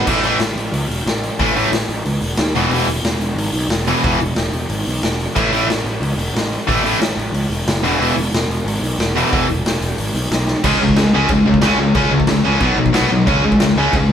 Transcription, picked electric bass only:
0.07 A1
0.24 A1
0.39 A1
0.56 A1
0.73 C#2
0.89 E1
1.06 A1
1.39 A1
1.56 A1
1.71 A1
1.89 A1
2.05 C#2
2.22 E1
2.39 D#2
2.55 E1
2.70 E1
2.87 E1
3.03 E1
3.20 E1
3.36 G#1
3.53 B1
3.69 E1
4.04 E1
4.20 E1
4.37 E1
4.53 E1
4.70 G#1
4.88 B1
5.03 E1
5.36 A1
5.53 A1
5.67 A1
5.85 A1
6.01 C#2
6.16 E1
6.33 A1
6.68 A1
6.85 A1
7.00 A1
7.17 A1
7.33 C#2
7.50 E1
7.67 F#1
7.83 E1
8.00 E1
8.17 E1
8.32 E1
8.48 E1
8.65 G#1
8.82 B1
8.99 E1
9.33 E1
9.50 E1
9.65 E1
9.81 E1
9.98 G#1
10.14 B1
10.31 B1
10.64 C#2
10.80 C#2
10.96 C#2
11.14 C#2
11.30 C#2
11.46 C#2
11.62 C#2
11.78 C#2
11.95 C#2
12.11 C#2
12.27 C#2
12.45 C#2
12.61 B1
12.77 B1
12.94 B1
13.11 B1
13.27 C#2
13.43 C#2
13.59 C#2
13.76 C#2
13.93 C#2
14.09 C#2

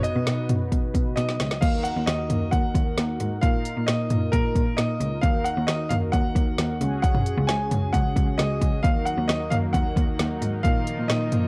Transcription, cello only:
0.16 B2
0.27 B2
0.50 B2
0.72 B2
0.95 B2
1.17 B2
1.40 C#2
1.62 D#2
1.96 D#2
2.08 D#2
2.30 D#2
2.52 D#2
2.75 D#2
2.98 D#2
3.21 G#2
3.43 A#2
3.77 A#2
3.88 A#2
4.11 A#2
4.33 A#2
4.55 A#2
4.78 A#2
5.01 C#2
5.23 D#2
5.57 D#2
5.68 D#2
5.91 D#2
6.13 D#2
6.36 D#2
6.59 D#2
6.81 C#2
7.38 C#2
7.49 C#2
7.71 C#2
7.94 C#2
8.16 C#2
8.39 C#2
8.62 C#2
8.84 D#2
9.18 D#2
9.29 D#2
9.52 D#2
9.74 D#2
9.97 D#2
10.19 D#2
10.42 G#2
10.64 A#2
10.98 A#2
11.10 A#2
11.32 A#2

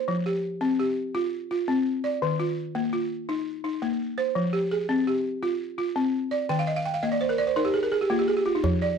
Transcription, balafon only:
Already playing: C5
0.08 F3
0.26 G4
0.61 C4
0.79 G4
1.15 F4
1.51 F4
1.68 C4
2.04 D5
2.22 D#3
2.40 F4
2.75 A#3
2.93 F4
3.29 D#4
3.64 D#4
3.82 A#3
4.18 C5
4.35 F3
4.53 G4
4.71 G#4
4.89 C4
5.07 G4
5.43 F4
5.78 F4
5.96 C4
6.31 D5
6.49 D#3 G5
6.59 F5
6.67 D#5
6.76 F5
6.85 G5
6.94 F5
7.03 A#3 D#5
7.12 D5
7.21 C5
7.29 A#4
7.38 D5
7.47 C5
7.56 D#4 A#4
7.65 G4
7.74 G#4
7.83 A#4
7.92 G#4
8.01 G4
8.10 A#3 F4
8.19 G4
8.28 G#4
8.37 G4
8.46 F4
8.55 D#4
8.64 F3
8.82 D5

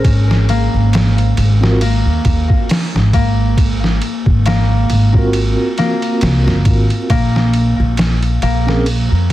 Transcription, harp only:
Already playing: A#3 C#4 A#4
0.49 A#3
1.82 A#3
3.14 A#3
4.46 A#3
5.78 A#3
7.10 A#3
8.43 A#3

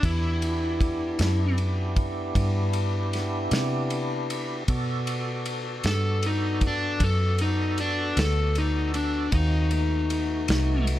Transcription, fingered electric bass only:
0.03 E2
1.20 F#2
2.35 G2
3.51 C3
4.68 B2
5.84 G2
7.00 F#2
8.17 D2
9.32 D#2
10.49 C2

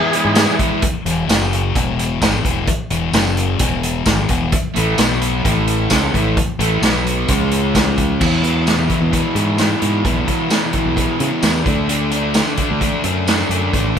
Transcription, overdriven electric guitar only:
Already playing: E3 G#3 B3
0.11 G#3 B3 E4
0.34 E3 G#3 B3 E4
0.57 E3 G#3 B3 E4
4.74 A2 E3 A3
4.97 B2 F#3 B3
5.45 A2 E3 A3
5.90 C#3 G#3 C#4
6.13 A2 E3 A3
6.60 A2 E3 A3
6.82 B2 F#3 B3
7.28 C#3 G#3 C#4
8.20 E2 B2 E3
8.43 E2 B2 E3
8.66 E2 B2 E3
8.90 E2 B2 E3
9.11 E2 B2 E3
9.34 E2 B2 E3
9.58 E2 B2 E3
9.80 E2 B2 E3
10.03 E2 B2 E3
10.26 E2 B2 E3
10.49 E2 B2 E3
10.72 E2 B2 E3
10.96 E2 B2 E3
11.18 E2 B2 E3
11.42 E2 B2 E3
11.65 D3 A3 D4
11.88 D3 A3 D4
12.11 D3 A3 D4
12.34 D3 A3 D4
12.56 D3 A3 D4
12.80 D3 A3 D4
13.04 D3 A3 D4
13.27 D3 A3 D4
13.50 D3 A3 D4
13.73 D3 A3 D4
13.96 D3

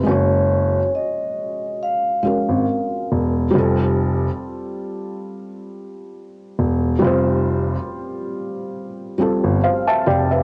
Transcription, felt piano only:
0.03 G#3 C#4
0.09 F#4 C#5
2.23 G#3 C#4 F#4
2.27 A#4
3.51 G3 C4
3.56 F4 A4
6.99 G3 C4
7.04 F4 C5
9.18 G3 C4 F4 A4
9.64 C5 F5
9.88 E5 A5
10.06 D5 G5
10.31 B4 E5

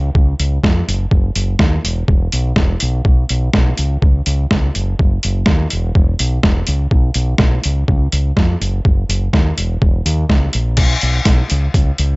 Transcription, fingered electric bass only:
0.15 C#2
0.40 C#2
0.63 F2
0.88 F#1
1.11 F#1
1.36 F#1
1.59 D#2
1.84 E1
2.09 E1
2.33 B1
2.56 E1
2.82 B1
3.05 B1
3.30 B1
3.54 B1
3.79 C#2
4.02 C#2
4.27 C#2
4.51 C#2
4.76 F#1
4.99 F#1
5.24 F#1
5.47 D#2
5.73 E1
5.95 E1
6.20 B1
6.43 E1
6.68 C#2
6.91 B1
7.15 B1
7.39 B1
7.65 C#2
7.88 C#2
8.13 C#2
8.37 F2
8.61 F#1
8.85 F#1
9.09 F#1
9.33 D#2
9.58 E1
9.82 E1
10.06 D#2
10.29 C#2
10.55 A#1
10.78 B1
11.03 B1
11.26 B1
11.51 C#2
11.74 C#2
11.99 C#2

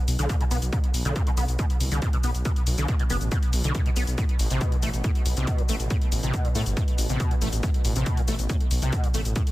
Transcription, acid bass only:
0.19 D3
0.29 B2
0.41 B2
0.51 B3
0.73 B2
1.05 D3
1.16 B2
1.27 B2
1.38 B3
1.59 B2
1.92 D3
2.02 B2
2.13 B2
2.24 B3
2.45 B2
2.78 D3
2.89 B2
3.00 B2
3.10 B3
3.32 B2
3.64 D3
3.75 B2
3.86 B2
3.97 B3
4.18 A2
4.51 C3
4.61 B2
4.72 A2
4.83 A3
5.05 A2
5.37 C3
5.48 B2
5.59 A2
5.69 A3
5.91 A2
6.23 C3
6.34 B2
6.45 A2
6.55 A3
6.77 A2
7.10 C3
7.20 B2
7.31 A2
7.42 A3
7.63 A2
7.96 C3
8.06 B2
8.18 A2
8.28 A3
8.50 A2
8.82 C3
8.93 B2
9.04 A2
9.14 A3
9.36 A2

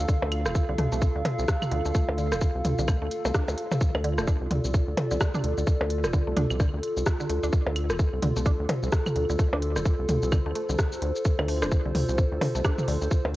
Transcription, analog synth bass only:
0.23 D2
0.46 D1
0.69 C2
0.79 D2
0.92 C2
1.16 D2
1.39 C2
1.72 D2
1.85 D2
2.09 D2
2.32 D1
2.55 C2
2.65 D2
2.78 C2
3.02 D2
3.25 C2
3.48 D2
3.95 D2
4.18 D1
4.41 C2
4.51 D2
4.64 C2
4.88 D2
5.11 C2
5.44 D2
5.58 D2
5.81 D2
6.04 D1
6.27 C2
6.37 D2
6.51 C2
6.74 D2
6.97 C2
7.30 D2
7.43 D2
7.67 D2
7.90 D1
8.13 C2
8.23 D2
8.37 C2
8.60 D2
8.83 C2
9.16 D2
9.30 D2
9.53 D2
9.76 D1
9.99 C2
10.09 D2
10.23 C2
10.46 D2
10.69 C2
11.02 D2
11.39 D2
11.62 D1
11.85 C2
11.95 D2
12.09 C2
12.32 D2
12.55 C2
12.88 D2
13.02 D2
13.25 D2

